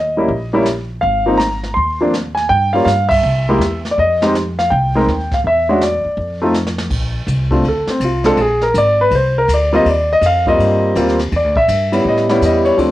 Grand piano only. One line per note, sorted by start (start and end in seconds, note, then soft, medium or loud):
0.00 0.47 D#5 medium
0.17 0.28 G3 medium
0.17 0.28 A#3 medium
0.17 0.28 C#4 medium
0.17 0.29 E4 medium
0.53 0.65 G3 medium
0.53 0.65 A#3 medium
0.53 0.65 C#4 medium
0.53 0.65 E4 medium
1.01 1.36 F5 medium
1.26 1.38 F3 medium
1.26 1.38 A#3 medium
1.26 1.38 C4 medium
1.26 1.39 D#4 medium
1.37 1.76 A#5 medium
1.74 2.09 C6 medium
2.01 2.12 F3 medium
2.01 2.12 A#3 medium
2.01 2.13 C4 medium
2.01 2.13 D4 medium
2.35 2.48 G#5 medium
2.49 2.72 G5 loud
2.73 2.86 G3 medium
2.73 2.86 A#3 medium
2.73 2.86 C#4 medium
2.73 2.86 F4 medium
2.73 2.83 F5 medium
2.85 3.10 F5 medium
3.09 3.79 E5 loud
3.49 3.60 G#3 medium
3.49 3.60 A#3 medium
3.49 3.60 E4 medium
3.49 3.61 G4 medium
3.91 3.97 D5 medium
3.99 4.33 D#5 medium
4.22 4.34 G#3 medium
4.22 4.34 C4 medium
4.22 4.34 D#4 medium
4.22 4.34 G4 medium
4.59 4.72 F5 medium
4.70 5.33 G5 medium
4.95 5.07 G#3 medium
4.95 5.07 C4 medium
4.95 5.07 D#4 medium
4.95 5.07 A#4 medium
5.34 5.39 F5 medium
5.47 5.80 E5 medium
5.69 5.80 G#3 medium
5.69 5.80 C#4 medium
5.69 5.81 D4 medium
5.69 5.81 F#4 medium
5.83 6.38 D5 medium
6.42 6.53 A3 medium
6.42 6.54 C4 medium
6.42 6.54 D#4 medium
6.42 6.54 F4 medium
7.51 7.63 A3 medium
7.51 7.63 C4 medium
7.51 7.63 D4 medium
7.51 7.64 F4 medium
7.68 7.90 A4 medium
7.90 8.02 C4 medium
8.04 8.24 F4 medium
8.24 8.37 G#3 medium
8.24 8.37 C4 medium
8.24 8.37 D4 medium
8.24 8.37 F4 medium
8.24 8.38 A4 loud
8.41 8.63 G#4 medium
8.63 8.75 A#4 medium
8.78 8.99 D5 loud
9.01 9.13 B4 medium
9.15 9.36 C5 medium
9.38 9.50 A#4 medium
9.54 9.74 D5 medium
9.73 9.84 G3 medium
9.73 9.85 A#3 medium
9.73 9.85 C4 medium
9.73 9.85 F4 medium
9.73 9.87 D#5 loud
9.90 10.10 D5 medium
10.13 10.23 D#5 loud
10.26 10.47 F5 loud
10.47 10.93 G3 medium
10.47 10.94 A#3 medium
10.47 10.93 C4 medium
10.47 10.94 F4 medium
10.47 10.93 D#5 loud
10.96 11.16 G3 medium
10.96 11.17 A#3 medium
10.96 11.17 C4 medium
10.96 11.17 F4 medium
11.36 11.57 D5 medium
11.57 12.02 E5 loud
11.92 12.26 G3 medium
11.92 12.26 B3 medium
11.92 12.27 C#4 medium
11.92 12.27 E4 medium
12.08 12.41 D#5 medium
12.29 12.76 G3 medium
12.29 12.76 B3 medium
12.29 12.76 C#4 medium
12.29 12.76 E4 medium
12.45 12.66 D#5 medium
12.65 12.78 C#5 medium
12.77 12.91 F3 medium
12.77 12.91 A3 medium
12.77 12.91 C4 medium
12.77 12.91 D4 medium